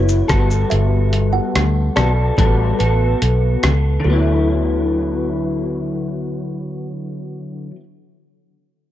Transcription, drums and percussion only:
0.09 shaker medium
0.29 kick medium
0.29 cross-stick medium
0.29 closed hi-hat soft
0.29 shaker soft
0.51 shaker medium
0.71 closed hi-hat medium
1.13 closed hi-hat soft
1.55 cross-stick medium
1.55 closed hi-hat medium
1.97 cross-stick medium
1.97 closed hi-hat soft
2.38 kick medium
2.38 closed hi-hat medium
2.80 closed hi-hat soft
3.22 closed hi-hat medium
3.63 cross-stick medium
3.63 closed hi-hat soft

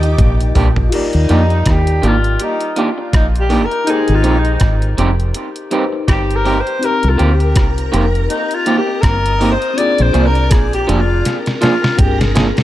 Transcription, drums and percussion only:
0.03 closed hi-hat soft
0.18 kick loud
0.18 closed hi-hat medium
0.18 high tom medium
0.40 closed hi-hat medium
0.55 mid tom medium
0.55 open hi-hat medium
0.76 floor tom medium
0.92 closed hi-hat medium
0.92 crash medium
1.13 closed hi-hat medium
1.29 closed hi-hat medium
1.50 closed hi-hat soft
1.66 kick loud
1.66 cross-stick loud
1.66 closed hi-hat medium
1.87 closed hi-hat medium
2.03 closed hi-hat medium
2.24 closed hi-hat soft
2.40 closed hi-hat medium
2.61 closed hi-hat soft
2.76 closed hi-hat medium
3.13 kick loud
3.13 cross-stick loud
3.13 closed hi-hat medium
3.36 closed hi-hat medium
3.50 open hi-hat medium
3.71 closed hi-hat soft
3.87 closed hi-hat medium
4.08 closed hi-hat medium
4.24 closed hi-hat medium
4.45 closed hi-hat soft
4.60 kick loud
4.60 cross-stick loud
4.60 closed hi-hat medium
4.82 closed hi-hat medium
4.98 closed hi-hat medium
5.20 closed hi-hat soft
5.34 closed hi-hat loud
5.56 closed hi-hat soft
5.71 closed hi-hat medium
6.08 kick loud
6.08 cross-stick loud
6.08 closed hi-hat medium
6.31 closed hi-hat medium
6.46 open hi-hat medium
6.67 closed hi-hat soft
6.83 closed hi-hat medium
7.03 closed hi-hat medium
7.19 closed hi-hat medium
7.40 closed hi-hat soft
7.56 kick loud
7.56 cross-stick loud
7.56 closed hi-hat loud
7.78 closed hi-hat medium
7.94 closed hi-hat medium
8.15 closed hi-hat soft
8.30 closed hi-hat loud
8.51 closed hi-hat medium
8.66 closed hi-hat medium
9.03 kick loud
9.03 cross-stick loud
9.03 closed hi-hat medium
9.26 closed hi-hat medium
9.41 open hi-hat medium
9.62 closed hi-hat soft
9.78 closed hi-hat medium
9.98 closed hi-hat medium
10.14 closed hi-hat medium
10.35 closed hi-hat soft
10.51 kick loud
10.51 cross-stick loud
10.51 closed hi-hat loud
10.73 closed hi-hat medium
10.89 closed hi-hat medium
11.25 snare medium
11.25 closed hi-hat medium
11.46 snare medium
11.46 closed hi-hat soft
11.62 snare medium
11.62 closed hi-hat medium
11.84 snare medium
11.99 kick loud
11.99 closed hi-hat medium
11.99 mid tom medium
12.21 snare medium
12.21 closed hi-hat medium
12.35 snare medium
12.35 closed hi-hat medium
12.57 snare medium
12.57 closed hi-hat soft

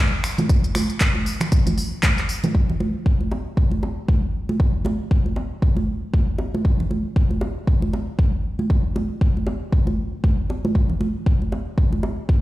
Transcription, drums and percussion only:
0.24 finger snap medium
0.24 open hi-hat medium
0.38 closed hi-hat soft
0.38 high conga medium
0.38 low conga medium
0.49 kick loud
0.49 closed hi-hat medium
0.64 closed hi-hat soft
0.75 finger snap medium
0.75 open hi-hat loud
0.75 high conga medium
0.90 closed hi-hat soft
1.01 kick loud
1.01 clap loud
1.01 closed hi-hat medium
1.15 high conga medium
1.26 open hi-hat loud
1.41 finger snap medium
1.41 closed hi-hat medium
1.41 low conga medium
1.52 kick loud
1.52 closed hi-hat medium
1.67 closed hi-hat medium
1.67 high conga medium
1.67 low conga medium
1.78 open hi-hat loud
2.03 kick loud
2.03 clap loud
2.03 closed hi-hat medium
2.03 high conga medium
2.18 clap soft
2.18 closed hi-hat soft
2.29 open hi-hat loud
2.44 closed hi-hat soft
2.44 high conga medium
2.44 low conga medium
2.55 kick loud
2.70 low conga medium
2.80 high conga medium
3.06 kick loud
3.21 high conga medium
3.31 high bongo medium
3.57 kick loud
3.71 high conga medium
3.83 high bongo medium
4.08 kick loud
4.08 high conga medium
4.49 high conga medium
4.60 kick loud
4.85 high bongo soft
4.85 high conga medium
5.11 kick loud
5.26 high conga medium
5.36 high bongo medium
5.62 kick loud
5.77 high conga medium
6.14 kick loud
6.14 high conga medium
6.38 high bongo medium
6.54 high conga medium
6.65 kick loud
6.80 low conga medium
6.91 high conga medium
7.16 kick loud
7.31 high conga medium
7.41 high bongo medium
7.67 kick loud
7.82 high conga medium
7.93 high bongo medium
8.19 kick loud
8.19 high conga medium
8.59 high conga medium
8.70 kick loud
8.96 high bongo soft
8.96 high conga medium
9.21 kick loud
9.37 high conga medium
9.47 high bongo medium
9.72 kick loud
9.87 high conga medium
10.24 kick loud
10.24 high conga medium
10.50 high bongo soft
10.65 high conga loud
10.75 kick loud
10.90 low conga medium
11.01 high conga medium
11.26 kick loud
11.42 high conga medium
11.52 high bongo medium
11.78 kick loud
11.93 high conga medium
12.03 high bongo medium
12.29 kick loud
12.29 high conga medium

